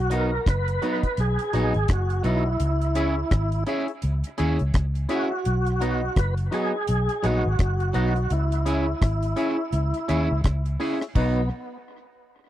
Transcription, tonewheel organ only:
0.00 0.15 F#4 loud
0.13 0.48 A#4 medium
0.50 1.21 B4 loud
1.20 1.92 G#4 medium
1.91 2.23 F#4 medium
2.26 3.64 E4 medium
5.11 6.21 F#4 medium
6.19 6.35 B4 loud
6.54 7.27 G#4 loud
7.26 7.60 F#4 medium
7.61 8.33 F#4 medium
8.32 10.41 E4 medium
11.17 11.50 B3 medium

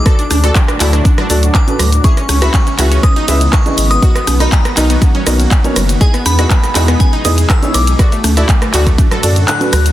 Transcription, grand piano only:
0.06 0.15 F#4 medium
0.06 0.15 A4 medium
0.06 0.15 D5 medium
0.44 0.52 F#4 medium
0.44 0.52 A4 medium
0.44 0.52 D5 medium
0.80 0.95 F#4 medium
0.80 0.95 A4 medium
0.80 0.95 D5 medium
1.30 1.39 F#4 medium
1.30 1.39 A4 medium
1.30 1.39 D5 loud
1.68 1.81 F#4 medium
1.68 1.81 A4 medium
1.68 1.81 B4 medium
2.04 2.13 C#4 medium
2.04 2.13 E4 medium
2.04 2.13 G#4 medium
2.04 2.13 B4 medium
2.04 2.13 E5 medium
2.42 2.50 C#4 medium
2.42 2.50 E4 medium
2.42 2.50 G#4 medium
2.42 2.50 B4 medium
2.42 2.50 E5 medium
2.79 2.93 C#4 medium
2.79 2.93 E4 medium
2.79 2.93 G#4 medium
2.79 2.93 B4 medium
2.79 2.93 E5 medium
3.28 3.37 C#4 medium
3.28 3.37 E4 medium
3.28 3.37 G#4 medium
3.28 3.37 B4 medium
3.28 3.37 E5 loud
3.66 3.80 C#4 medium
3.66 3.80 E4 medium
3.66 3.80 G#4 medium
3.66 3.80 B4 medium
3.66 3.80 D#5 medium
4.03 4.12 B3 medium
4.03 4.12 D#4 medium
4.03 4.12 F#4 medium
4.03 4.12 A#4 medium
4.03 4.12 D#5 medium
4.40 4.49 B3 medium
4.40 4.49 D#4 medium
4.40 4.49 F#4 medium
4.40 4.49 A#4 medium
4.40 4.49 D#5 loud
4.77 4.92 B3 medium
4.77 4.92 D#4 medium
4.77 4.92 F#4 medium
4.77 4.92 A#4 medium
4.77 4.92 D#5 medium
5.26 5.36 B3 medium
5.26 5.36 D#4 medium
5.26 5.36 F#4 medium
5.26 5.36 A#4 medium
5.26 5.36 D#5 loud
5.64 5.78 B3 medium
5.64 5.78 D#4 medium
5.64 5.78 F#4 medium
5.64 5.78 A#4 medium
5.64 5.78 C#5 medium
6.01 6.10 B3 medium
6.01 6.10 D#4 medium
6.01 6.10 E4 medium
6.01 6.10 G#4 medium
6.01 6.10 D#5 medium
6.39 6.47 B3 medium
6.39 6.47 D#4 medium
6.39 6.47 E4 medium
6.39 6.47 G#4 medium
6.39 6.47 D#5 medium
6.75 6.90 B3 medium
6.75 6.90 D#4 medium
6.75 6.90 E4 medium
6.75 6.90 G#4 medium
6.75 6.90 D#5 medium
7.25 7.34 B3 medium
7.25 7.34 D#4 medium
7.25 7.34 E4 medium
7.25 7.34 G#4 medium
7.25 7.34 D#5 loud
7.63 7.76 B3 medium
7.63 7.76 D#4 medium
7.63 7.76 E4 medium
7.63 7.76 G#4 medium
7.63 7.76 C#5 medium
7.99 8.08 F#4 medium
7.99 8.08 A4 medium
7.99 8.08 D5 medium
8.37 8.45 F#4 medium
8.37 8.45 A4 medium
8.37 8.45 D5 loud
8.74 8.88 F#4 medium
8.74 8.88 A4 medium
8.74 8.88 D5 medium
9.23 9.32 F#4 medium
9.23 9.32 A4 medium
9.23 9.32 D5 loud
9.61 9.75 F#4 medium
9.61 9.75 A4 medium
9.61 9.75 B4 medium

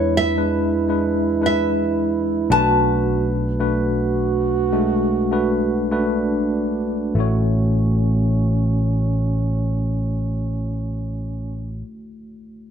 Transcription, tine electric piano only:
0.00 2.45 E2 medium
0.00 2.45 E3 medium
0.00 0.37 G#3 loud
0.00 0.38 D4 medium
0.00 0.38 E4 medium
0.00 0.38 B4 loud
0.37 0.79 G#3 medium
0.37 0.79 D4 medium
0.37 0.80 E4 medium
0.37 0.80 B4 medium
0.88 1.31 G#3 medium
0.88 1.32 D4 medium
0.88 1.32 E4 medium
0.88 1.32 B4 medium
1.41 2.27 G#3 medium
1.41 2.27 D4 medium
1.41 2.27 E4 medium
1.41 2.28 B4 medium
2.50 7.12 B1 medium
2.50 7.12 B2 medium
2.50 3.37 A3 medium
2.50 3.37 D4 medium
2.50 3.38 F#4 medium
2.50 3.38 B4 medium
3.59 4.50 A3 medium
3.59 4.50 D4 medium
3.59 4.50 F#4 medium
3.59 4.50 B4 medium
4.72 5.20 G#3 medium
4.72 5.20 A3 medium
4.72 5.19 D4 medium
4.72 5.20 F#4 medium
5.31 5.79 A3 medium
5.31 5.79 D4 medium
5.31 5.80 F#4 medium
5.31 5.80 B4 medium
5.91 6.90 A3 medium
5.91 6.90 D4 medium
5.91 6.90 F#4 medium
5.91 6.90 B4 medium
7.15 11.85 A1 medium
7.15 11.82 A3 medium
7.15 11.83 E4 medium
7.15 11.86 F#4 medium
7.20 11.87 C#5 medium

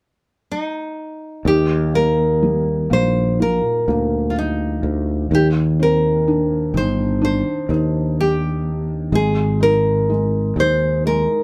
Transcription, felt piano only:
1.46 5.28 D#4 medium
1.94 2.89 A#3 soft
2.42 4.31 G3 soft
2.90 3.87 A#3 soft
3.40 5.28 A#2 soft
3.88 5.28 A#3 soft
5.32 9.10 D#3 medium
5.80 7.66 C4 soft
6.28 7.20 D4 soft
6.74 7.69 D#4 soft
7.21 9.09 D4 medium
7.70 9.10 D#4 soft
9.13 10.08 G#3 medium
9.60 10.55 D#4 soft
10.10 11.04 G#3 soft
10.57 11.43 D#4 soft
11.06 11.43 G#3 medium

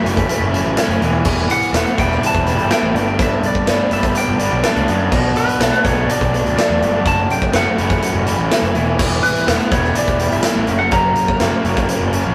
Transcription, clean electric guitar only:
0.00 0.74 E5 medium
1.51 1.99 F#5 loud
1.99 2.24 G5 loud
2.27 2.72 A5 loud
2.72 3.21 G5 medium
3.22 3.45 E5 loud
3.46 3.90 D5 loud
3.93 4.17 E5 medium
4.18 4.85 G5 medium
5.37 5.84 B4 medium
5.85 6.10 C#5 medium
6.10 6.55 D5 loud
6.58 7.07 D5 medium
7.07 7.29 A5 loud
7.31 7.53 G5 loud
7.55 8.47 F#5 medium
9.23 9.73 B4 medium
9.72 9.94 C#5 medium
9.98 10.30 D5 loud
10.33 10.82 E5 medium
10.79 10.91 F#5 medium
10.93 12.33 A#5 medium

